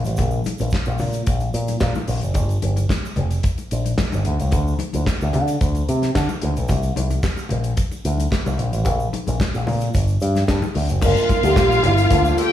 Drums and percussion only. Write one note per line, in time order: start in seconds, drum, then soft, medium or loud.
0.05 closed hi-hat soft
0.05 shaker medium
0.17 kick medium
0.17 closed hi-hat medium
0.17 low conga medium
0.17 shaker medium
0.31 shaker medium
0.44 closed hi-hat medium
0.44 high conga medium
0.44 shaker medium
0.58 closed hi-hat soft
0.58 high conga medium
0.58 shaker medium
0.70 kick loud
0.70 snare loud
0.70 shaker medium
0.75 clap medium
0.85 muted conga soft
0.85 shaker medium
0.98 open hi-hat soft
0.98 low conga medium
0.98 shaker medium
1.13 closed hi-hat soft
1.13 shaker medium
1.27 kick loud
1.27 closed hi-hat medium
1.27 muted conga soft
1.27 shaker medium
1.40 closed hi-hat soft
1.40 muted conga soft
1.40 shaker soft
1.53 closed hi-hat medium
1.53 shaker medium
1.67 closed hi-hat soft
1.67 high conga medium
1.67 shaker soft
1.80 kick loud
1.80 snare loud
1.80 clap medium
1.80 shaker medium
1.95 muted conga soft
1.95 high conga medium
1.95 shaker medium
2.08 open hi-hat medium
2.08 low conga medium
2.08 shaker soft
2.21 closed hi-hat soft
2.21 shaker medium
2.34 kick loud
2.34 closed hi-hat medium
2.34 muted conga soft
2.34 low conga medium
2.34 shaker medium
2.49 closed hi-hat soft
2.49 shaker medium
2.62 closed hi-hat medium
2.62 high conga medium
2.76 closed hi-hat soft
2.76 high conga medium
2.76 shaker medium
2.89 kick loud
2.89 snare loud
2.89 clap medium
2.89 shaker medium
3.05 shaker medium
3.16 closed hi-hat soft
3.16 low conga medium
3.31 closed hi-hat soft
3.31 shaker medium
3.43 kick loud
3.43 closed hi-hat medium
3.43 shaker medium
3.58 closed hi-hat soft
3.58 muted conga soft
3.58 shaker soft
3.71 closed hi-hat medium
3.71 shaker medium
3.85 closed hi-hat soft
3.85 high conga medium
3.85 shaker soft
3.98 kick loud
3.98 snare loud
3.98 clap loud
3.98 shaker medium
4.12 closed hi-hat soft
4.12 muted conga soft
4.12 high conga medium
4.12 shaker medium
4.24 closed hi-hat medium
4.24 low conga medium
4.40 closed hi-hat soft
4.40 shaker medium
4.51 kick medium
4.51 closed hi-hat medium
4.51 low conga medium
4.51 shaker medium
4.68 shaker medium
4.79 closed hi-hat medium
4.79 high conga medium
4.93 closed hi-hat soft
4.93 high conga medium
4.93 shaker medium
5.06 kick loud
5.06 snare medium
5.06 clap medium
5.06 muted conga soft
5.06 shaker medium
5.21 shaker medium
5.33 closed hi-hat medium
5.33 low conga medium
5.48 closed hi-hat soft
5.48 shaker medium
5.61 kick loud
5.61 closed hi-hat medium
5.61 shaker medium
5.75 closed hi-hat soft
5.75 muted conga soft
5.75 shaker soft
5.89 closed hi-hat medium
5.89 shaker medium
6.02 snare soft
6.02 closed hi-hat soft
6.02 high conga medium
6.02 shaker soft
6.15 kick loud
6.15 snare loud
6.15 clap loud
6.15 muted conga soft
6.15 shaker medium
6.29 muted conga soft
6.29 high conga medium
6.29 shaker medium
6.41 closed hi-hat medium
6.41 low conga medium
6.56 closed hi-hat soft
6.56 shaker medium
6.68 kick loud
6.68 closed hi-hat medium
6.68 muted conga soft
6.68 low conga medium
6.68 shaker medium
6.82 closed hi-hat soft
6.82 shaker medium
6.96 closed hi-hat medium
6.96 high conga medium
7.10 closed hi-hat soft
7.10 high conga medium
7.10 shaker medium
7.23 kick loud
7.23 snare loud
7.23 clap medium
7.23 shaker medium
7.36 closed hi-hat soft
7.36 muted conga soft
7.36 shaker medium
7.49 closed hi-hat soft
7.49 low conga medium
7.64 closed hi-hat soft
7.64 shaker medium
7.77 kick loud
7.77 closed hi-hat medium
7.77 muted conga soft
7.77 shaker medium
7.92 closed hi-hat soft
7.92 muted conga soft
7.92 shaker soft
8.05 closed hi-hat medium
8.05 shaker medium
8.17 closed hi-hat soft
8.17 high conga medium
8.17 shaker soft
8.31 kick loud
8.31 snare loud
8.31 clap medium
8.31 muted conga soft
8.31 shaker medium
8.46 high conga medium
8.46 shaker medium
8.58 closed hi-hat medium
8.58 low conga medium
8.73 closed hi-hat soft
8.73 shaker medium
8.85 kick medium
8.85 closed hi-hat medium
8.85 muted conga soft
8.85 low conga medium
8.85 shaker medium
9.00 shaker medium
9.13 closed hi-hat medium
9.13 high conga medium
9.27 closed hi-hat soft
9.27 high conga medium
9.27 shaker soft
9.40 kick loud
9.40 snare loud
9.40 clap medium
9.40 muted conga soft
9.40 shaker medium
9.54 closed hi-hat soft
9.54 muted conga soft
9.54 shaker medium
9.67 open hi-hat soft
9.67 low conga medium
9.81 closed hi-hat soft
9.81 shaker medium
9.94 kick loud
9.94 closed hi-hat medium
9.94 shaker medium
10.07 closed hi-hat soft
10.07 shaker soft
10.20 closed hi-hat medium
10.20 shaker medium
10.35 snare soft
10.35 closed hi-hat soft
10.35 high conga medium
10.35 shaker soft
10.48 kick loud
10.48 snare loud
10.48 clap medium
10.48 shaker medium
10.62 muted conga soft
10.62 high conga medium
10.62 shaker soft
10.74 open hi-hat medium
10.74 low conga medium
10.89 closed hi-hat soft
10.89 shaker medium
11.01 kick loud
11.01 crash loud
11.01 muted conga soft
11.01 low conga medium
11.01 shaker loud
11.17 muted conga soft
11.17 shaker medium
11.29 kick loud
11.29 closed hi-hat medium
11.29 high conga loud
11.29 shaker medium
11.43 closed hi-hat medium
11.43 high conga medium
11.43 shaker medium
11.56 kick loud
11.56 snare loud
11.56 clap medium
11.56 shaker medium
11.72 closed hi-hat soft
11.72 shaker medium
11.83 closed hi-hat medium
11.83 low conga medium
11.97 closed hi-hat medium
11.97 shaker medium
12.11 kick loud
12.11 closed hi-hat loud
12.11 shaker medium
12.25 muted conga soft
12.25 shaker medium
12.38 closed hi-hat medium
12.38 shaker medium